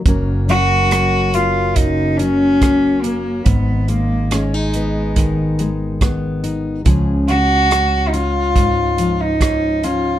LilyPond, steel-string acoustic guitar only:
\new Staff \with { instrumentName = "Steel-string acoustic guitar" } { \time 4/4 \key fis \major \tempo 4 = 71 << { <fis ais cis' ais'>4 cis'8 ais4. ais8 cis'8 | r4 cis'16 dis'16 b4. b8 dis'8 | <eis cis' gis'>4 cis'8 cis'4. cis'8 cis'8 | } \\ { fis,8 fis4. cis8 fis4. | gis,8 gis4. dis8 gis4. | cis8 r4. gis,8 eis4. | } >> }